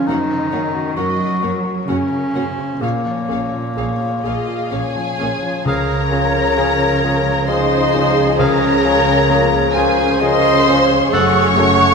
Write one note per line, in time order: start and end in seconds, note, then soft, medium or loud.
0.00 0.10 F3 soft
0.00 0.11 C#4 medium
0.00 0.11 D#4 medium
0.00 0.11 G#4 medium
0.07 0.16 F#2 medium
0.07 2.79 F#2 medium
0.07 0.96 D#3 medium
0.07 0.16 A#3 medium
0.07 0.96 D#4 medium
0.07 0.16 F#4 medium
0.07 0.52 C5 medium
0.07 0.17 C#5 medium
0.07 0.17 F#5 medium
0.32 0.67 C#3 soft
0.51 0.60 F#2 medium
0.51 0.60 A#3 medium
0.51 0.89 C#4 soft
0.51 0.59 F#4 medium
0.51 0.97 A#4 medium
0.51 0.60 C#5 medium
0.51 0.60 F#5 medium
0.75 1.11 F#4 soft
0.96 1.04 F#2 medium
0.96 1.88 F#3 medium
0.96 1.05 A#3 medium
0.96 1.58 F#4 medium
0.96 1.05 F#4 medium
0.96 1.33 A#4 medium
0.96 1.06 C#5 medium
0.96 1.42 D#5 medium
0.96 1.05 F#5 medium
1.20 1.56 F#4 soft
1.41 1.50 F#2 medium
1.41 1.50 A#3 medium
1.41 1.49 F#4 medium
1.41 1.79 A#4 soft
1.41 1.89 C#5 medium
1.41 1.51 C#5 medium
1.41 1.51 F#5 soft
1.65 2.02 F#4 soft
1.87 1.96 F#2 medium
1.87 2.82 C#3 medium
1.87 1.96 A#3 medium
1.87 2.83 C#4 medium
1.87 2.26 C#4 medium
1.87 1.95 F#4 medium
1.87 2.35 A#4 medium
1.87 1.97 C#5 medium
1.87 1.97 F#5 medium
2.11 2.49 C#3 soft
2.34 2.42 F#2 medium
2.34 2.42 A#3 medium
2.34 2.73 C#4 soft
2.34 2.42 F#4 medium
2.34 2.82 C5 medium
2.34 2.44 C#5 medium
2.34 2.43 F#5 medium
2.58 2.82 C#3 soft
2.80 2.90 A#1 medium
2.80 5.63 A#2 medium
2.80 5.16 A#2 medium
2.80 2.88 A#3 medium
2.80 5.20 A#3 medium
2.80 2.89 G#4 medium
2.80 2.91 C#5 medium
2.80 3.69 C#5 medium
2.80 2.91 F5 medium
3.05 3.44 F3 soft
3.29 3.38 A#1 medium
3.29 3.37 A#3 soft
3.29 3.68 C#4 soft
3.29 3.37 G#4 soft
3.29 3.40 C#5 soft
3.29 3.40 F5 soft
3.53 3.92 F4 soft
3.77 3.86 A#1 medium
3.77 3.85 A#3 medium
3.77 4.15 G#4 soft
3.77 3.85 G#4 medium
3.77 4.22 C#5 medium
3.77 3.86 C#5 soft
3.77 3.86 F5 soft
4.00 4.39 F4 soft
4.24 4.33 A#1 medium
4.24 4.33 A#3 soft
4.24 4.70 F4 medium
4.24 4.63 G#4 soft
4.24 4.33 G#4 soft
4.24 4.70 G#4 medium
4.24 4.34 C#5 soft
4.24 4.73 D#5 medium
4.24 4.70 F5 medium
4.24 4.34 F5 soft
4.48 4.86 F4 soft
4.71 4.80 A#1 medium
4.71 4.80 A#3 medium
4.71 5.10 C#4 soft
4.71 5.67 G#4 medium
4.71 4.80 G#4 medium
4.71 4.79 C#5 medium
4.71 5.20 C#5 medium
4.71 5.66 C#5 medium
4.71 4.79 F5 soft
4.71 5.67 G#5 loud
4.95 5.34 F3 soft
5.19 5.28 A#1 soft
5.19 5.28 A#3 soft
5.19 5.58 C#4 soft
5.19 5.29 G#4 soft
5.19 5.67 C5 medium
5.19 5.28 C#5 soft
5.19 5.28 F5 soft
5.42 5.66 F3 soft
5.65 6.11 C#2 medium
5.65 11.09 C#2 medium
5.65 11.09 C#3 medium
5.65 11.09 F3 medium
5.65 7.45 C#4 medium
5.65 6.02 G#4 medium
5.65 11.09 G#4 medium
5.65 7.45 A#4 loud
5.65 7.45 A#4 medium
5.65 7.49 C#5 loud
5.65 6.02 F5 medium
5.65 7.45 A#5 loud
6.11 6.54 C#4 soft
6.11 6.54 F4 medium
6.11 6.54 G#4 medium
6.57 6.99 C#4 medium
6.57 6.99 F4 medium
6.57 7.00 G#4 medium
7.04 7.45 C#4 medium
7.04 7.45 F4 medium
7.04 7.46 G#4 medium
7.48 7.90 C#4 medium
7.48 8.40 D#4 medium
7.48 7.90 F4 medium
7.48 7.91 G#4 medium
7.48 9.30 G#4 medium
7.48 8.40 C5 medium
7.48 8.39 D#5 medium
7.48 8.39 C6 loud
7.94 8.35 C#4 medium
7.94 8.36 F4 medium
7.94 8.36 G#4 medium
8.39 8.83 C#2 medium
8.39 8.84 C#4 medium
8.39 8.73 G#4 medium
8.39 9.75 A#4 loud
8.39 9.76 C#5 loud
8.39 8.74 F5 medium
8.39 9.73 A#5 loud
8.85 9.26 C#4 medium
8.85 9.30 C#4 medium
8.85 9.26 F4 medium
8.85 9.26 G#4 medium
9.29 9.76 A#3 medium
9.29 9.71 C#4 medium
9.29 9.71 F4 medium
9.29 9.71 G#4 medium
9.29 10.19 A#4 medium
9.74 11.10 C#4 medium
9.74 10.17 C#4 medium
9.74 10.17 F4 medium
9.74 10.20 G#4 medium
9.74 10.17 G#4 medium
9.74 10.22 C5 medium
9.74 10.20 G#5 loud
10.20 10.63 C#4 medium
10.20 10.63 F4 medium
10.20 10.63 G#4 medium
10.20 10.66 A#4 medium
10.20 11.12 C5 loud
10.20 10.84 D#5 loud
10.20 11.13 C6 loud
10.67 11.09 C#4 medium
10.67 11.09 F4 medium
10.67 11.94 G#4 medium
10.67 11.10 G#4 medium
11.12 11.94 F#1 medium
11.12 11.57 F#2 medium
11.12 11.94 F#2 medium
11.12 11.94 F#3 medium
11.12 11.94 A3 medium
11.12 11.57 C#4 medium
11.12 11.47 A4 medium
11.12 11.94 C#5 loud
11.12 11.48 F#5 medium
11.12 11.94 F#5 loud
11.12 11.94 C#6 loud
11.58 11.94 A3 loud
11.58 11.94 C#4 medium
11.58 11.94 F#4 medium
11.58 11.94 A4 medium